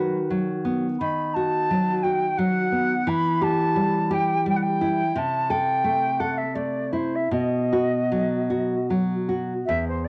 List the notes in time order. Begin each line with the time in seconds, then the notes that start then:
Already playing: D#3 F#3 F#4 B4
0.30 F#3
0.65 B3
1.00 D#3 B5
1.34 F#4 A5
1.71 F#3
2.03 F#4 G5
2.37 F#3 F#5
2.72 B3
3.07 E3 B5
3.41 G4 A5
3.76 G3
4.11 G4 G5
4.46 G3 G5
4.56 F#5
4.62 G5
4.81 E4
5.16 C3 A5
5.50 A4 G5
5.84 A3
6.19 A4 F#5
6.37 E5
6.55 A3 D5
6.92 E4 C5
7.15 E5
7.31 B2 D#5
7.73 F#4
8.12 F#3
8.50 F#4
8.90 F#3
9.29 F#4
9.66 E2 E5
9.88 C5
10.04 D5